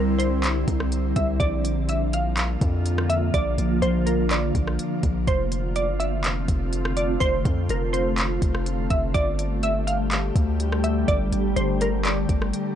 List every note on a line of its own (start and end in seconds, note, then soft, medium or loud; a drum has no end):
0.00 0.65 C2 loud
0.00 9.10 D3 medium
0.00 1.36 G3 medium
0.00 1.36 C4 medium
0.00 1.36 E4 loud
0.00 0.18 A#4 medium
0.00 downlifter medium
0.19 1.12 C5 medium
0.19 closed hi-hat medium
0.44 clap loud
0.44 closed hi-hat medium
0.68 1.14 C2 loud
0.68 kick loud
0.68 closed hi-hat medium
0.80 cross-stick medium
0.92 closed hi-hat medium
1.16 1.39 C2 loud
1.16 1.39 E5 medium
1.16 kick medium
1.16 closed hi-hat medium
1.40 2.57 A#1 loud
1.40 5.24 F3 medium
1.40 5.24 A#3 medium
1.40 5.24 F4 loud
1.40 1.85 D5 loud
1.40 kick loud
1.40 closed hi-hat medium
1.65 closed hi-hat medium
1.89 2.12 E5 medium
1.89 closed hi-hat medium
2.13 3.06 F5 medium
2.13 closed hi-hat medium
2.37 clap loud
2.37 closed hi-hat medium
2.61 3.31 F2 loud
2.61 kick loud
2.61 closed hi-hat medium
2.86 closed hi-hat medium
2.98 cross-stick loud
3.10 3.33 E5 medium
3.10 closed hi-hat medium
3.34 3.57 A#1 loud
3.34 3.79 D5 loud
3.34 kick loud
3.34 closed hi-hat medium
3.58 3.81 A#1 loud
3.58 closed hi-hat medium
3.82 4.52 A#1 loud
3.82 4.05 C5 loud
3.82 closed hi-hat medium
4.06 4.29 A#4 medium
4.06 closed hi-hat medium
4.31 5.24 D5 medium
4.31 clap loud
4.31 closed hi-hat medium
4.55 4.78 A#1 loud
4.55 kick loud
4.55 closed hi-hat medium
4.67 cross-stick medium
4.79 closed hi-hat medium
5.03 5.26 A#1 loud
5.03 kick loud
5.03 closed hi-hat medium
5.27 5.90 F1 loud
5.27 12.75 A3 medium
5.27 9.11 C4 medium
5.27 9.11 F4 loud
5.27 5.73 C5 loud
5.27 kick loud
5.27 closed hi-hat medium
5.52 closed hi-hat medium
5.76 5.99 D5 medium
5.76 closed hi-hat medium
5.88 6.20 G1 loud
6.00 6.93 E5 medium
6.00 closed hi-hat medium
6.18 6.47 F1 loud
6.24 clap loud
6.24 closed hi-hat medium
6.48 7.18 F1 loud
6.48 kick loud
6.48 closed hi-hat medium
6.73 closed hi-hat medium
6.85 cross-stick loud
6.97 7.20 D5 medium
6.97 closed hi-hat medium
7.20 7.44 F1 loud
7.20 7.66 C5 loud
7.20 kick loud
7.20 closed hi-hat medium
7.45 7.68 F2 loud
7.45 kick loud
7.45 closed hi-hat medium
7.69 8.39 F1 loud
7.69 7.93 A#4 medium
7.69 closed hi-hat medium
7.93 8.86 C5 medium
7.93 closed hi-hat medium
8.18 clap loud
8.18 closed hi-hat medium
8.42 8.88 F1 loud
8.42 kick loud
8.42 closed hi-hat medium
8.55 cross-stick medium
8.66 closed hi-hat medium
8.90 9.14 F1 loud
8.90 9.13 E5 medium
8.90 kick medium
8.90 closed hi-hat medium
9.14 10.31 G1 loud
9.14 12.75 D3 medium
9.14 12.75 G3 medium
9.14 12.75 G4 medium
9.14 9.60 D5 loud
9.14 kick loud
9.14 closed hi-hat medium
9.39 closed hi-hat medium
9.63 9.86 E5 medium
9.63 closed hi-hat medium
9.87 10.80 F5 medium
9.87 closed hi-hat medium
10.11 clap loud
10.11 closed hi-hat medium
10.36 11.05 D2 loud
10.36 kick loud
10.36 closed hi-hat medium
10.60 closed hi-hat medium
10.72 cross-stick loud
10.84 11.07 E5 medium
10.84 closed hi-hat medium
11.08 11.31 G1 loud
11.08 11.53 D5 loud
11.08 kick loud
11.08 closed hi-hat medium
11.32 11.55 G1 loud
11.32 closed hi-hat medium
11.56 12.26 G1 loud
11.56 11.79 C5 medium
11.56 closed hi-hat medium
11.81 12.04 A#4 medium
11.81 closed hi-hat medium
12.05 12.75 D5 medium
12.05 clap loud
12.05 closed hi-hat medium
12.29 12.52 G1 loud
12.29 kick loud
12.29 closed hi-hat medium
12.42 cross-stick medium
12.53 closed hi-hat medium